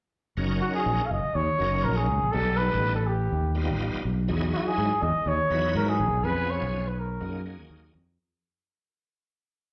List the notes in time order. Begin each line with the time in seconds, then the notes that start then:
0.37 F#1 F#3 C#4 D#4 A#4
0.61 F#4
0.75 G#4
0.86 A#1
1.06 F5
1.11 F#1 D#5
1.24 muted fingered electric bass stroke
1.35 D#2 C#5
1.58 F#1 F#3 C#4 D#4 A#4
1.84 A#1 A#4
1.97 G#4
2.09 C#2
2.23 A#1
2.31 B1 G3 B3 D#4 A4
2.57 B4
2.73 A1
2.95 A4
3.07 G4
3.32 D#2
3.55 G3 B3 D#4 F4
3.70 A1
3.94 muted fingered electric bass stroke
4.05 B1
4.28 E2 F#3 D#4 E4 G#4
4.53 E4 F#4
4.61 F#4
4.68 G#4
4.78 G#2
5.02 E2 D#5
5.26 D#2 C#5
5.50 E2 F#3 D#4 E4 B4
5.75 G#2 A#4
5.89 G#4
6.00 B1
6.13 B1
6.23 F2 F3 B3 C#4 G#4 B4
6.50 C#5
6.62 B1
6.88 B4
6.99 A#4
7.21 F#2 F#3 A#3 D#4 G#4
7.46 F#3 A#3 D#4 G#4
7.60 D#2
7.70 D#2
7.95 F2